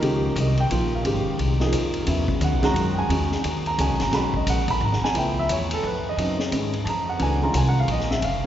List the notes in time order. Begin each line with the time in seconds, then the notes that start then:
Already playing: F3 A#3 D#4 A#4
0.01 C#2 D#3 G#3 C#4 G4, ride
0.36 C2, hi-hat pedal, ride
0.40 D#5
0.57 G5, ride
0.70 A#1 F3 A#3 D#4 F4, ride
0.95 F5
1.04 G#1 D#3 G#3 C#4 G4, ride
1.27 muted upright bass stroke
1.39 C2, ride
1.60 F3 A#3 D#4 G#4, snare
1.73 F2, hi-hat pedal, ride
1.94 ride
2.06 E2 C#3 F#3 B3 E4, ride
2.28 kick
2.41 D#2 F#5, hi-hat pedal, ride
2.52 B1
2.62 G#1 D#3 G#3 C#4 F#4 A#5, snare, ride
2.74 F#2, ride
2.94 G5
2.99 G#5
3.09 E2 D#3 G#3 C#4 F#4, ride
3.32 snare
3.44 D#2, hi-hat pedal, ride
3.66 A#5, ride
3.78 C#2 D#3 G#3 C#4 F#4 G#5, hi-hat pedal, ride
3.89 B1
4.00 G#1 A#5, snare, ride
4.11 B1 D#3 G#3 C#4 F#4 B5, snare, ride
4.34 D#5, kick
4.47 A#1 F#5, hi-hat pedal, ride
4.68 B5, kick, ride
4.81 G#1 A#5
4.93 snare
5.02 G#5, muted upright bass stroke, snare
5.14 C#2 F3 A3 B3 E4 G5, ride
5.39 E5
5.49 E2 C#5, hi-hat pedal, ride
5.71 A4, ride
5.83 F2 B4
6.09 D#5
6.17 F#2 C#3 F#3 C4 D#4, ride
6.39 snare
6.51 G#2 D#3 G#3 C#4 G#4, hi-hat pedal, ride
6.74 ride
6.84 F2 A5, ride
6.89 A#5
7.09 F#5
7.19 C#2 E3 A3 D4 F#4 G#5, ride
7.42 D#3 G#3 C#4 F4 A#5
7.53 C2, hi-hat pedal, ride
7.58 G#5
7.69 F#5
7.80 F5
7.88 A#1 D#5, ride
8.00 snare
8.11 E5, snare
8.22 F#1 F5, ride